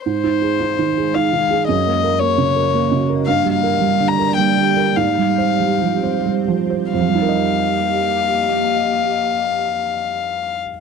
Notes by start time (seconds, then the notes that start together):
0.04 G#2 G#3 G#4 C5 F5
0.24 D#4
0.42 G#4
0.60 D#4
0.79 D#3
0.97 G#4
1.15 D#4 F5
1.33 D#3
1.51 G#4
1.67 F#2 A#3 F#4 D#5
1.87 A#3
2.04 A#4
2.20 A#3 C#5
2.38 C#3
2.56 A#4
2.74 A#3
2.91 C#3
3.09 A#4
3.26 G2 G4 D5 F5
3.44 G3
3.53 F5
3.63 A#4
3.80 G3
4.00 D3
4.08 A#5
4.19 A#4
4.36 G3 G5
4.57 D3
4.77 A#4
4.96 G#2 C4 C5 F5
5.18 G3
5.38 C5
5.60 G3
5.81 F3
6.03 C5
6.25 G3
6.48 F3
6.70 C5
6.92 F2 A#3 G4 D#5 F5
7.01 F3
7.08 G3
7.15 D#4
7.22 A#4
7.29 D#5